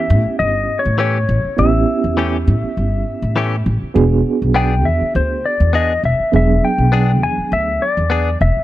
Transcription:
Already playing: E2 B3 C#4 E4 G4 E5
0.10 A2
0.26 muted upright bass stroke
0.39 G1 D#5
0.79 C#5
0.85 A2
0.98 E3 A3 C#4 G4 C#5
1.29 A1
1.45 muted upright bass stroke
1.57 A1 B3 C#4 E4 G4 E5
2.04 E2
2.17 E3 A3 C#4 G4
2.47 A2
2.63 muted upright bass stroke
2.77 G1
3.22 A2
3.36 E3 A3 C#4 G4
3.66 A1
3.82 muted upright bass stroke
3.94 E1 B3 D4 F#4 G#4
4.42 B1
4.54 B3 D4 G#4 G5
4.85 E2 E5
5.01 muted upright bass stroke
5.15 D2 C5
5.46 D5
5.60 E2
5.73 B3 D4 G#4 D#5
6.03 E1 E5
6.19 muted upright bass stroke
6.32 E1 F#3 B3 D4 G#4 E5
6.65 G5
6.78 B1
6.92 B3 D4 G#4
7.22 E2 G#5
7.38 muted upright bass stroke
7.52 D2 E5
7.82 D5
7.97 E2
8.10 B3 D4 G#4
8.41 E1 E5
8.57 muted upright bass stroke

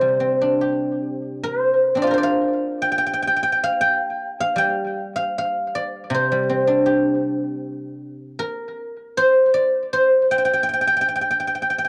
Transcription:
Already playing: C3 D3 C5 D5
0.01 G3
0.20 C4
0.42 D4
0.61 G4
1.43 C5
1.95 C4 D4
2.02 F4 D5
2.07 G4 A#4
2.14 C5
2.18 D5
2.23 F5
2.82 G5
2.92 G5
2.98 G5
3.06 G5
3.13 G5
3.22 G5
3.27 G5
3.36 G5
3.43 G5
3.52 G5
3.64 F5
3.81 G5
4.40 F5
4.56 G3 G5
5.16 F5
5.38 F5
5.75 D5
6.10 C3
6.14 C5
6.32 G3
6.50 C4
6.67 D4
6.86 G4
8.39 A#4
9.17 C5
9.54 D5
9.93 C5
10.31 G5
10.38 G5
10.45 G5
10.53 G5
10.63 G5
10.69 G5
10.73 G5
10.81 G5
10.87 G5
10.97 G5
11.01 G5
11.08 G5
11.16 G5
11.21 G5
11.31 G5
11.40 G5
11.47 G5
11.55 G5
11.62 G5
11.70 G5
11.78 G5
11.85 G5

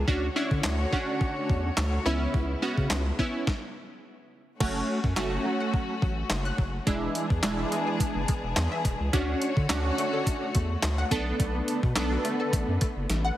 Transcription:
0.08 D2 D3 A3 C#4 D4 F#4 C#5, kick
0.36 C#4 D4 E4
0.51 D3, kick
0.63 D2, snare, clap
0.92 C#4 D4 F#4, kick
1.21 kick
1.50 E2, kick
1.77 D2, snare, clap
2.06 C#2 C#3 G#3 B3 C#4 E4
2.34 C#2, kick
2.62 B3 C#4 F#4
2.77 C#3, kick
2.90 C#2, snare, clap
3.19 B3 C#4 E4, kick
3.47 kick, snare
4.60 F#1 F#3 A3 C#4 F#4, kick, crash
4.76 A3
5.04 F#2, kick
5.16 F#1 F#3 A3 C#4 F#4, snare, clap
5.32 F#4
5.45 F#3
5.60 F#5
5.74 F#3, kick
6.02 A1 F#3, kick
6.30 F#1, snare, clap
6.45 F#6
6.58 F#1 F#3, kick
6.87 E1 E3 G#3 B3 D4 E4 G#4, kick, closed hi-hat
7.02 B3
7.15 closed hi-hat
7.30 E2, kick
7.43 E1 G#3 D4 E4, snare, clap, closed hi-hat
7.58 E4
7.72 G#3, closed hi-hat
7.87 G#4
8.00 G#3, kick, closed hi-hat
8.15 F#1
8.28 G#3, kick, closed hi-hat
8.43 E1
8.56 E2, snare, clap, closed hi-hat
8.72 E5
8.85 E1 G#3, kick, closed hi-hat
9.00 C#2
9.13 D2 D3 A3 C#4 D4 F#4 C#5, kick, closed hi-hat
9.28 C#4
9.42 closed hi-hat
9.57 D3, kick
9.69 D2 A3 C#4 D4 F#4, snare, clap, closed hi-hat
9.85 F#4
9.98 A3, closed hi-hat
10.13 A4
10.27 A3, kick, closed hi-hat
10.55 E2 A3, kick, closed hi-hat
10.82 D2, snare, clap, closed hi-hat
10.98 F#5
11.11 B1 D3 A3 B3 D4 A4, kick, closed hi-hat
11.40 B1 A3, kick, closed hi-hat
11.55 B3
11.68 closed hi-hat
11.83 B2, kick
11.96 B1 A3 B3 D4 A4, snare, clap, closed hi-hat
12.11 F#4
12.25 A3, closed hi-hat
12.40 A4
12.53 A1 A3, kick, closed hi-hat
12.68 F#2
12.81 A3, kick, closed hi-hat
12.96 F#1
13.10 A1, snare, closed hi-hat
13.25 F#5

